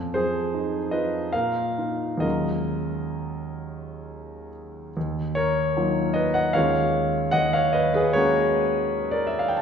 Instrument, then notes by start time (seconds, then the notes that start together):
grand piano
Already playing: F2
0.14 F3 G#4 C5
0.54 D#4
0.91 F4 B4 D#5
1.33 A#2 A#4 F5
1.78 D#4 F4
2.17 D#2 F#3 G#3 C#4 D#5
2.22 F4 A#4
4.97 D#2
5.35 A#4 C#5
5.77 F#3 A#3 D#4 F4
6.14 B4 D#5
6.34 D#5 F#5
6.53 D#2 G#3 A#3 C#4 F4 C#5 F5
7.31 D#2 D#5 F#5
7.53 C#5 F5
7.73 B4 D#5
7.94 G#4 B4
8.13 G#3 A#3 C#4 F#4 A#4 C#5
9.11 A#4 D5
9.27 E5
9.39 F5
9.48 G5
9.57 A5